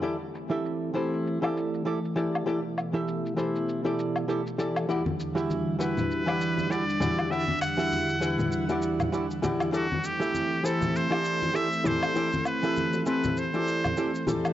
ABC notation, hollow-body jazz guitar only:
X:1
M:4/4
L:1/16
Q:"Swing 16ths" 1/4=99
K:Clyd
V:1 name="Hollow-body jazz guitar"
[E,EGAd] z2 [E,EGAe]3 [E,EGAc]3 [E,EGAd]3 [E,EGAd] z [E,EGAd]2 | [E,EGAd] z2 [E,EGAe]3 [E,EGAc]3 [E,EGAd]3 [E,EGAd] z [E,EGAd]2 | [E,EFGd] z2 [E,EFGe]3 [E,EFGB]3 [E,EFGd]3 [E,EFGd] z [E,EFGd]2 | [E,EFGd] z2 [E,EFGe]3 [E,EFGB]3 [E,EFGd]3 [E,EFGd] z [E,EFGd]2 |
[E,EGAd] z2 [E,EGAe]3 [E,EGAc]3 [E,EGAd]3 [E,EGAd] z [E,EGAd]2 | [E,EGAd] z2 [E,EGAe]3 [E,CEGA]3 [E,EGAd]3 [E,EGAd] z [E,EGAd]2 |]